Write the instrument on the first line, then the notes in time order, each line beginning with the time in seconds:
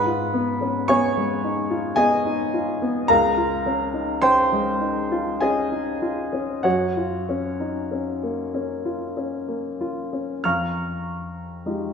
grand piano
Already playing: G#2 B4 F#5 B5
0.07 F4
0.34 B3
0.61 C#4
0.88 B3 C#5 G#5 C#6
1.17 G#3
1.44 D#4
1.70 F4
1.96 B3 G#4 D#5 G#5
2.25 D#4
2.54 F4
2.82 B3
3.08 C#2 A#4 F5 A#5
3.37 F4
3.66 C#4
3.94 D#4
4.22 C#4 C5 G5 C6
4.52 G#3
4.81 D#4
5.12 F4
5.41 C#4 G#4 D#5 G#5
5.72 D#4
6.02 F4
6.33 C#4
6.63 F#2 F#4 C#5 F#5
6.97 F4
7.29 C#4
7.60 D#4
7.92 C#4
8.23 A#3
8.54 C#4
8.85 F4
9.17 C#4
9.48 A#3
9.81 F4
10.13 C#4
10.44 F2 F5 A#5 C#6 F6
11.66 G#3 D#4 F4 G4